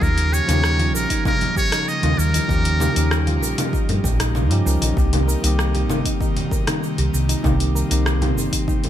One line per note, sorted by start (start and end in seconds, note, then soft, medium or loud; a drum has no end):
0.00 0.39 D#2 loud
0.00 4.93 C#3 medium
0.00 0.44 F3 medium
0.00 4.93 F3 medium
0.00 8.89 G3 medium
0.00 7.40 A#3 medium
0.00 0.45 C#4 medium
0.00 8.89 D#4 medium
0.00 0.10 D#4 medium
0.00 0.45 D#4 medium
0.00 0.46 G4 medium
0.00 0.35 A#4 loud
0.00 kick loud
0.00 cabasa soft
0.18 open hi-hat soft
0.32 0.47 G4 medium
0.32 0.95 C#5 loud
0.32 cabasa medium
0.46 0.94 D#2 medium
0.46 2.45 F3 medium
0.46 2.45 C#4 medium
0.46 0.62 D#4 loud
0.46 2.46 D#4 medium
0.46 open hi-hat medium
0.46 low conga medium
0.46 cabasa soft
0.52 2.47 G4 medium
0.64 cross-stick medium
0.64 cabasa soft
0.79 0.93 F4 medium
0.79 open hi-hat soft
0.79 high conga loud
0.94 1.04 A#1 medium
0.94 1.24 A#4 medium
0.94 high bongo medium
0.94 cabasa medium
1.10 1.24 D#4 medium
1.10 kick medium
1.10 open hi-hat medium
1.10 cabasa soft
1.25 1.34 D#4 medium
1.25 1.55 A#4 loud
1.25 kick loud
1.25 low conga medium
1.25 cabasa soft
1.41 open hi-hat soft
1.41 low conga medium
1.56 1.71 G4 medium
1.56 1.90 C#5 loud
1.56 kick loud
1.56 high bongo medium
1.56 high conga medium
1.56 cabasa medium
1.72 1.86 D#4 loud
1.72 cross-stick medium
1.72 open hi-hat medium
1.72 cabasa soft
1.88 2.20 D#5 loud
1.88 cabasa soft
2.03 2.13 D#2 medium
2.03 2.17 F4 medium
2.03 open hi-hat soft
2.03 low conga medium
2.18 2.38 D#2 medium
2.18 3.42 A#4 loud
2.18 cabasa medium
2.34 2.48 D#4 medium
2.34 open hi-hat medium
2.34 high conga medium
2.34 cabasa soft
2.48 2.87 D#2 loud
2.48 2.92 F3 medium
2.48 2.92 C#4 medium
2.48 2.58 D#4 medium
2.48 2.93 D#4 medium
2.48 2.93 G4 medium
2.48 kick loud
2.48 cabasa soft
2.65 open hi-hat soft
2.80 2.94 G4 medium
2.80 low conga medium
2.80 cabasa medium
2.95 3.42 D#2 medium
2.95 3.16 F3 medium
2.95 3.17 C#4 medium
2.95 3.09 D#4 loud
2.95 3.17 D#4 medium
2.95 3.17 G4 medium
2.95 open hi-hat medium
2.95 cabasa soft
3.11 cross-stick medium
3.11 cabasa soft
3.27 3.41 F4 medium
3.27 open hi-hat soft
3.27 high conga medium
3.42 3.52 A#1 medium
3.42 high bongo medium
3.42 cabasa medium
3.58 3.72 D#4 medium
3.58 open hi-hat medium
3.58 low conga medium
3.58 cabasa soft
3.73 3.82 D#4 medium
3.73 kick loud
3.73 cabasa soft
3.89 3.98 G2 medium
3.89 open hi-hat soft
3.89 high bongo medium
3.89 low conga medium
4.04 4.51 A#1 medium
4.04 4.18 G4 medium
4.04 kick loud
4.04 high conga medium
4.04 low conga medium
4.04 cabasa medium
4.20 4.33 D#4 loud
4.20 cross-stick medium
4.20 open hi-hat medium
4.20 cabasa soft
4.35 low conga medium
4.35 cabasa soft
4.50 4.60 G2 loud
4.50 4.62 F3 loud
4.50 4.62 C#4 medium
4.50 4.63 D#4 medium
4.50 4.64 F4 medium
4.50 4.63 G4 loud
4.50 open hi-hat soft
4.65 4.76 C#2 loud
4.65 4.93 F3 medium
4.65 4.93 C#4 medium
4.65 4.93 D#4 medium
4.65 4.94 A#4 loud
4.65 cabasa medium
4.82 4.91 A#1 loud
4.82 4.95 D#4 medium
4.82 open hi-hat medium
4.82 high bongo medium
4.82 high conga medium
4.82 cabasa soft
4.96 5.34 C2 loud
4.96 8.89 C3 medium
4.96 5.39 D#3 medium
4.96 8.89 D#3 medium
4.96 5.40 A#3 medium
4.96 5.40 C4 medium
4.96 5.05 D#4 medium
4.96 5.41 G4 medium
4.96 kick loud
4.96 cabasa soft
5.13 open hi-hat soft
5.13 low conga medium
5.28 5.42 A#4 medium
5.28 cabasa medium
5.42 5.90 C2 medium
5.42 7.40 D#3 medium
5.42 7.41 A#3 medium
5.42 7.41 C4 medium
5.42 5.57 D#4 loud
5.42 open hi-hat medium
5.42 cabasa soft
5.47 7.42 G4 loud
5.59 cross-stick medium
5.59 cabasa soft
5.74 5.88 G4 medium
5.74 open hi-hat soft
5.74 high conga medium
5.90 6.00 G1 loud
5.90 high bongo medium
5.90 low conga medium
5.90 cabasa medium
6.05 6.19 D#4 medium
6.05 kick medium
6.05 open hi-hat medium
6.05 cabasa soft
6.21 6.29 D#4 medium
6.21 kick loud
6.21 cabasa soft
6.37 open hi-hat soft
6.37 low conga medium
6.51 6.66 A#4 medium
6.51 kick loud
6.51 high bongo medium
6.51 high conga medium
6.51 cabasa medium
6.67 6.81 D#4 loud
6.67 cross-stick medium
6.67 open hi-hat medium
6.67 low conga medium
6.67 cabasa soft
6.83 cabasa soft
6.98 7.08 C2 loud
6.98 7.12 G4 medium
6.98 open hi-hat soft
7.14 7.33 C2 medium
7.14 cabasa medium
7.29 7.42 D#4 medium
7.29 open hi-hat medium
7.29 high conga medium
7.29 cabasa soft
7.43 7.82 C2 loud
7.43 7.86 D#3 loud
7.43 7.87 A#3 medium
7.43 8.89 C4 medium
7.43 7.87 C4 medium
7.43 7.53 D#4 medium
7.43 7.88 G4 loud
7.43 kick loud
7.43 low conga medium
7.43 cabasa soft
7.60 open hi-hat soft
7.75 7.89 A#4 medium
7.75 cabasa medium
7.90 8.37 C2 loud
7.90 8.11 D#3 medium
7.90 8.12 A#3 medium
7.90 8.12 C4 medium
7.90 8.04 D#4 medium
7.90 8.12 G4 medium
7.90 open hi-hat medium
7.90 cabasa soft
8.06 cross-stick medium
8.06 cabasa soft
8.22 8.35 G4 medium
8.22 open hi-hat soft
8.22 high conga loud
8.22 low conga medium
8.37 8.47 G1 medium
8.37 high bongo medium
8.37 cabasa medium
8.53 8.66 D#4 medium
8.53 kick medium
8.53 open hi-hat medium
8.53 cabasa soft
8.68 8.76 D#4 medium
8.68 kick loud
8.68 cabasa soft
8.84 open hi-hat soft
8.84 high bongo medium
8.84 low conga medium